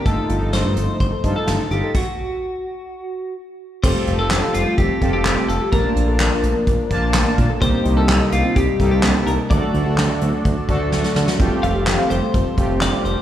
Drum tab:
CC |----------------|x---------------|x---------------|----------------|
HH |x-x-x-x-x-x-x-x-|----------------|--x-x-x-x-x-x-x-|x-x-x-x-x-x-x-x-|
CP |----------------|----------------|----x-------x---|----x-------x---|
SD |----o-------o---|----------------|----o-------o---|----o-------o---|
BD |o-------o-o-----|o---------------|o-------o-o-----|o-------o-o---o-|

CC |----------------|----------------|----------------|
HH |x-x-x-x-x-x-x-x-|x-x-x-x-x-x-----|x-x-x-x-x-x-x-x-|
CP |----x-------x---|----x-----------|----x-------x---|
SD |----o-------o---|----o-------oooo|----o-------o---|
BD |o-------o-o-----|o-------o-o-----|o-------o-o-----|